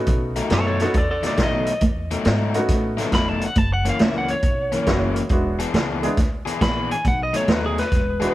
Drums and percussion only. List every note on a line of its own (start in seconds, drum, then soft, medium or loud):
0.07 kick loud
0.07 closed hi-hat medium
0.36 closed hi-hat medium
0.50 snare loud
0.50 closed hi-hat medium
0.80 snare soft
0.80 closed hi-hat medium
0.94 kick loud
0.94 closed hi-hat medium
1.23 snare soft
1.23 closed hi-hat medium
1.37 kick medium
1.37 snare loud
1.37 closed hi-hat medium
1.66 closed hi-hat medium
1.81 kick medium
1.81 closed hi-hat medium
2.11 closed hi-hat medium
2.25 snare loud
2.25 closed hi-hat medium
2.54 closed hi-hat medium
2.68 kick loud
2.68 snare soft
2.68 closed hi-hat medium
2.98 snare soft
2.98 closed hi-hat medium
3.12 kick medium
3.12 snare loud
3.12 closed hi-hat medium
3.41 closed hi-hat medium
3.55 kick loud
3.55 closed hi-hat medium
3.85 closed hi-hat medium
3.99 snare loud
3.99 closed hi-hat medium
4.28 closed hi-hat medium
4.43 kick loud
4.43 closed hi-hat medium
4.72 closed hi-hat medium
4.86 kick medium
4.86 snare loud
4.86 closed hi-hat medium
5.16 closed hi-hat medium
5.29 kick loud
5.29 closed hi-hat medium
5.60 closed hi-hat medium
5.74 snare loud
5.74 closed hi-hat medium
6.03 closed hi-hat medium
6.17 kick loud
6.17 snare soft
6.17 closed hi-hat medium
6.47 closed hi-hat medium
6.61 kick medium
6.61 snare loud
6.61 closed hi-hat medium
6.91 closed hi-hat medium
7.05 kick loud
7.05 closed hi-hat medium
7.34 closed hi-hat medium
7.48 snare loud
7.48 closed hi-hat medium
7.78 snare soft
7.78 closed hi-hat medium
7.92 kick loud
7.92 snare soft
7.92 closed hi-hat medium
8.21 closed hi-hat medium